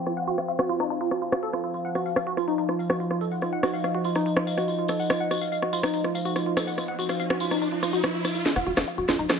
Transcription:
0.00 8.44 F3 medium
0.00 1.76 C4 medium
0.06 0.12 F4 medium
0.06 cross-stick soft
0.17 0.26 F#5 loud
0.27 0.31 F#4 loud
0.38 0.41 F5 medium
0.38 cross-stick soft
0.48 0.54 F5 medium
0.59 0.68 F#4 loud
0.59 cross-stick medium
0.69 0.73 F4 loud
0.80 0.83 D#4 loud
0.80 cross-stick soft
0.90 0.99 D#4 medium
1.01 1.10 F4 medium
1.11 1.17 F#4 medium
1.11 cross-stick soft
1.22 1.28 F4 medium
1.32 1.38 F#4 medium
1.32 cross-stick medium
1.43 1.49 A4 loud
1.53 1.59 F4 medium
1.53 cross-stick soft
1.64 1.70 F4 medium
1.74 8.48 D#4 medium
1.74 1.80 F4 medium
1.74 tambourine soft
1.85 1.94 F#5 loud
1.95 1.99 F#4 loud
1.95 cross-stick soft
1.95 tambourine medium
2.06 2.09 F5 medium
2.06 tambourine soft
2.16 2.22 F5 medium
2.16 cross-stick medium
2.16 tambourine soft
2.27 2.35 F#4 loud
2.37 2.41 F4 loud
2.37 cross-stick soft
2.37 tambourine medium
2.48 2.51 D#4 loud
2.48 tambourine soft
2.58 2.67 D#4 medium
2.58 tambourine soft
2.69 2.77 F4 medium
2.69 cross-stick soft
2.79 2.85 F5 medium
2.79 tambourine medium
2.90 2.93 F#4 loud
2.90 cross-stick medium
2.90 tambourine medium
3.00 3.04 F4 medium
3.00 tambourine soft
3.11 3.19 F4 medium
3.11 cross-stick soft
3.21 3.27 A4 medium
3.21 tambourine medium
3.31 3.37 F#5 medium
3.31 tambourine soft
3.42 3.48 F4 medium
3.42 cross-stick soft
3.42 tambourine soft
3.53 3.61 F#5 loud
3.63 3.67 F#4 loud
3.63 cross-stick medium
3.63 tambourine medium
3.74 3.77 F5 medium
3.74 tambourine soft
3.84 3.90 F5 medium
3.84 cross-stick soft
3.84 tambourine soft
3.95 4.03 F#4 loud
4.04 4.09 F4 loud
4.04 tambourine medium
4.15 4.19 D#4 loud
4.15 cross-stick soft
4.15 tambourine medium
4.26 4.35 D#4 medium
4.26 tambourine soft
4.37 4.45 F4 medium
4.37 cross-stick medium
4.47 4.53 F5 medium
4.47 tambourine medium
4.58 4.61 F#4 loud
4.58 cross-stick soft
4.58 tambourine soft
4.68 4.71 F4 medium
4.68 tambourine soft
4.79 4.87 F4 medium
4.88 4.95 A4 medium
4.88 cross-stick soft
4.88 tambourine medium
4.99 5.05 F#5 medium
4.99 tambourine soft
5.10 5.16 F4 medium
5.10 cross-stick medium
5.10 tambourine soft
5.10 riser medium
5.20 5.29 F#5 loud
5.31 5.34 F#4 loud
5.31 cross-stick soft
5.31 tambourine medium
5.41 5.45 F5 medium
5.41 tambourine soft
5.52 5.58 F5 medium
5.52 tambourine soft
5.62 5.71 F#4 loud
5.62 cross-stick soft
5.73 5.76 F4 loud
5.73 tambourine medium
5.83 5.87 D#4 loud
5.83 cross-stick medium
5.83 tambourine medium
5.93 6.03 D#4 medium
5.93 tambourine soft
6.04 6.13 F4 medium
6.04 cross-stick soft
6.15 6.21 F5 medium
6.15 tambourine medium
6.25 6.29 F#4 loud
6.25 tambourine soft
6.36 6.39 F4 medium
6.36 cross-stick soft
6.36 tambourine soft
6.46 6.55 F4 medium
6.57 6.63 A4 medium
6.57 cross-stick medium
6.57 tambourine medium
6.67 6.73 F#5 medium
6.67 tambourine medium
6.78 6.84 F4 medium
6.78 cross-stick soft
6.78 tambourine soft
6.88 6.97 F#5 loud
6.99 7.02 F#4 loud
6.99 tambourine medium
7.09 7.13 F5 medium
7.09 cross-stick soft
7.09 tambourine soft
7.20 7.26 F5 medium
7.20 tambourine soft
7.30 7.39 F#4 loud
7.30 cross-stick medium
7.40 7.44 F4 loud
7.40 tambourine medium
7.51 7.55 D#4 loud
7.51 cross-stick soft
7.51 tambourine medium
7.62 7.70 D#4 medium
7.62 tambourine soft
7.72 7.81 F4 medium
7.83 7.91 F4 loud
7.83 cross-stick soft
7.83 tambourine medium
7.93 7.97 F#4 loud
7.93 tambourine medium
8.04 8.09 F4 medium
8.04 cross-stick medium
8.04 tambourine soft
8.14 8.20 F4 medium
8.25 8.33 F4 medium
8.25 cross-stick soft
8.25 tambourine medium
8.35 8.41 F4 medium
8.35 tambourine medium
8.46 9.40 F3 medium
8.46 9.40 C4 medium
8.46 8.51 F4 medium
8.46 snare soft
8.46 closed hi-hat medium
8.56 8.63 F1 medium
8.56 8.65 F#5 loud
8.56 cross-stick soft
8.56 closed hi-hat medium
8.67 8.73 F1 loud
8.67 8.70 F#4 loud
8.67 open hi-hat loud
8.77 8.84 F1 medium
8.77 8.81 F5 medium
8.77 cross-stick medium
8.77 snare soft
8.77 closed hi-hat medium
8.88 8.93 F5 medium
8.88 closed hi-hat medium
8.98 9.05 F1 medium
8.98 9.07 F#4 loud
8.98 closed hi-hat medium
9.09 9.15 F1 loud
9.09 9.12 F4 loud
9.09 cross-stick soft
9.09 snare soft
9.09 open hi-hat loud
9.19 9.26 F1 medium
9.19 9.23 D#4 loud
9.19 closed hi-hat medium
9.30 9.38 D#4 medium
9.30 cross-stick medium
9.30 snare medium
9.30 closed hi-hat medium

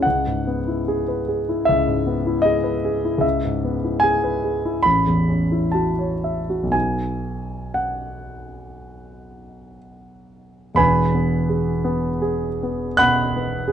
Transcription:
0.02 1.66 C#2 soft
0.02 1.68 F#5 medium
0.27 0.60 G#2 soft
0.47 0.81 B3 soft
0.68 1.01 E4 soft
0.88 1.21 G#4 soft
1.08 1.41 B4 soft
1.28 1.61 G#4 soft
1.49 1.80 E4 soft
1.65 3.16 C#2 medium
1.65 2.43 E5 medium
1.87 2.18 G#2 soft
2.07 2.37 B3 soft
2.27 2.56 E4 soft
2.42 2.76 G#4 soft
2.42 3.23 D#5 medium
2.64 2.96 B4 soft
2.85 3.16 G#4 soft
3.05 3.25 E4 soft
3.18 4.78 C#2 medium
3.18 4.02 E5 medium
3.45 3.76 G#2 soft
3.65 3.96 B3 soft
3.84 4.16 E4 soft
4.00 4.36 G#4 medium
4.00 4.84 G#5 medium
4.24 4.56 B4 soft
4.44 4.77 G#4 soft
4.65 4.86 E4 soft
4.83 6.70 A1 medium
4.83 5.73 B5 medium
5.07 5.42 E2 soft
5.29 5.65 C#4 soft
5.52 5.90 E4 soft
5.72 6.14 F#4 soft
5.72 6.73 A5 medium
5.99 6.39 C#5 soft
6.24 6.64 E5 soft
6.50 6.73 F#4 soft
6.63 10.70 B1 soft
6.71 10.74 B3 soft
6.71 10.74 D#4 soft
6.71 10.75 F#4 soft
6.71 7.77 G#5 medium
7.74 9.77 F#5 medium
10.74 12.96 E1 medium
10.74 12.94 E2 medium
10.74 12.95 B4 medium
10.74 12.95 G#5 medium
10.74 12.97 B5 medium
11.14 11.71 B3 soft
11.49 12.07 G#4 soft
11.85 12.47 B3 medium
12.22 12.86 G#4 soft
12.63 13.21 B3 soft
12.97 13.54 B2 medium
12.97 13.72 F#5 medium
12.97 13.72 B5 medium
12.97 13.72 F#6 loud
13.36 13.72 B3 soft
13.68 13.72 G#4 soft

